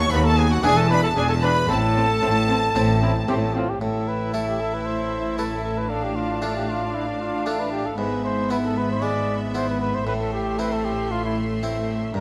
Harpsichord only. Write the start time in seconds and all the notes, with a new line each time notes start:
Already playing: B3 F#4 A4
0.10 D#2
0.63 E2 D4 E4 B4
1.16 E2
1.69 A2
2.23 A2
2.75 A2 C4 E4 A4
3.29 A2
3.81 A2
4.34 A3 E4 A4
5.38 A3 E4 A4
6.42 A3 D4 F4
7.46 A3 D4 F4
7.98 G#2
8.50 B3 E4
9.02 G#3
9.54 B3 E4
10.07 A2
10.59 C4 E4
11.63 C4 E4
12.14 G2